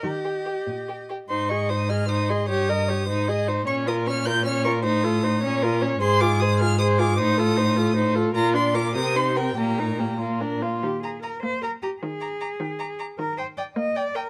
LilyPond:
<<
  \new Staff \with { instrumentName = "Violin" } { \time 6/8 \key ees \major \tempo 4. = 102 ees''2~ ees''8 r8 | \key aes \major c'''8 des'''8 ees'''8 f'''8 ees'''8 c'''8 | ees'''2~ ees'''8 r8 | des'''8 ees'''8 f'''8 g'''8 f'''8 des'''8 |
ees'''2~ ees'''8 r8 | \key ees \major c'''8 d'''8 ees'''8 f'''8 ees'''8 d'''8 | ees'''2~ ees'''8 r8 | bes''8 c'''8 d'''8 ees'''8 c'''8 g''8 |
bes''4. r4. | r8 ees'''8 ees'''8 r8 ees'''8 ees'''8 | r8 d'''8 d'''8 r8 d'''8 d'''8 | r8 ees'''8 ees'''8 r8 ees'''8 ees'''8 | }
  \new Staff \with { instrumentName = "Violin" } { \time 6/8 \key ees \major r8 g'8 g'8 r8 g'8 g'8 | \key aes \major c''8 ees''8 c''8 ees''8 c''8 ees''8 | des''8 ees''8 des''8 c''8 ees''8 c''8 | des''8 bes'8 des''8 bes'8 des''8 bes'8 |
c''8 a'8 c''8 des''8 bes'8 des''8 | \key ees \major c''8 aes'8 c''8 aes'8 c''8 aes'8 | c''8 a'8 c''8 a'8 c''8 a'8 | bes'8 d''8 bes'8 bes'8 c''8 bes'8 |
g'8 bes'8 g'8 f'8 bes'8 f'8 | r8 bes''8 bes''8 r8 bes''8 bes''8 | r8 bes''8 bes''8 r8 bes''8 bes''8 | r8 g''8 g''8 r8 g''8 g''8 | }
  \new Staff \with { instrumentName = "Viola" } { \time 6/8 \key ees \major g'2~ g'16 r8. | \key aes \major ees'8 aes'8 ees'8 aes'8 ees'8 aes'8 | g'8 bes'8 g'8 ees'8 aes'8 ees'8 | des'8 f'8 des'8 f'8 des'8 f'8 |
ees'8 f'8 ees'8 des'8 f'8 des'8 | \key ees \major aes'8 f'8 aes'8 f'8 aes'8 f'8 | ees'8 f'8 ees'8 f'8 ees'8 f'8 | f'8 d'8 f'8 c'8 ees'8 c'8 |
bes8 ees'8 bes8 bes8 d'8 bes8 | ees4. bes4. | ees4. ees4. | ees4. bes4. | }
  \new Staff \with { instrumentName = "Cello" } { \time 6/8 \key ees \major ees4. bes,4. | \key aes \major aes,2. | g,4. aes,4. | bes,2. |
a,4. bes,4. | \key ees \major aes,2. | a,2. | bes,4. c4. |
bes,2~ bes,8 r8 | g'8 aes'8 bes'8 c''8 bes'8 g'8 | aes'2~ aes'8 r8 | bes'8 c''8 d''8 ees''8 d''8 bes'8 | }
>>